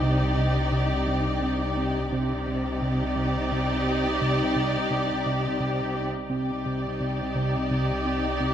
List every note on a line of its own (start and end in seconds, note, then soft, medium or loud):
0.00 2.08 C2 soft
0.00 2.08 C2 medium
0.00 2.08 C3 soft
0.00 0.24 C3 medium
0.00 2.08 D#4 soft
0.00 2.09 G4 soft
0.00 2.09 D5 soft
0.38 0.59 C3 soft
0.72 0.93 C3 medium
1.08 1.29 C3 medium
1.42 1.63 C3 medium
1.77 1.98 C4 medium
2.11 6.26 C2 medium
2.11 6.07 C2 soft
2.11 6.07 C3 medium
2.11 2.33 C3 medium
2.11 6.07 D#4 medium
2.11 6.07 G4 medium
2.11 6.07 D5 medium
2.48 2.68 C3 medium
2.82 3.03 C3 medium
3.16 3.37 C3 medium
3.52 3.73 C3 medium
3.87 4.08 C4 medium
4.21 4.43 C3 medium
4.56 4.77 C3 soft
4.91 5.12 C3 medium
5.26 5.47 C3 medium
5.60 5.81 C3 soft
5.95 6.16 C4 soft
6.30 8.54 C2 soft
6.30 8.54 C2 medium
6.30 6.51 C3 medium
6.30 8.54 C3 soft
6.30 8.54 D#4 soft
6.30 8.54 G4 soft
6.30 8.54 D5 soft
6.66 6.87 C3 soft
7.00 7.22 C3 soft
7.35 7.56 C3 medium
7.71 7.92 C3 soft
8.06 8.27 C4 medium
8.40 8.54 C3 medium